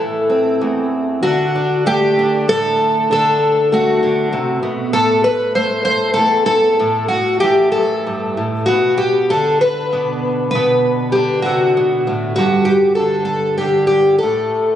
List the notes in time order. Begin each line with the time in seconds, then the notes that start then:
Already playing: A2 E3 A3 A4
0.30 C4
0.61 E2
1.23 D3 F#4
1.55 D4
1.86 A3 G4
2.19 D4
2.49 A2 A4
3.11 D3 A4
3.72 A3 F#4
4.03 D3
4.33 C3
4.63 B2
4.93 A2 A4
5.24 B4
5.55 A3 C5
5.85 C5
6.14 E2 A4
6.46 A4
6.79 A2
7.08 F#4
7.40 E3 G4
7.72 F#2 A4
8.07 G2
8.37 A2
8.66 B2 F#4
8.98 G4
9.30 D3 A4
9.61 B4
9.92 B2 D4
10.51 B4
10.55 B2
11.12 D3 G4
11.42 C3 F#4
11.77 B2
12.07 A2
12.36 G2 F#4
12.65 G4
12.95 A4
12.99 D3
13.25 A4
13.58 D3 G4
13.87 G4
14.19 A4
14.23 A2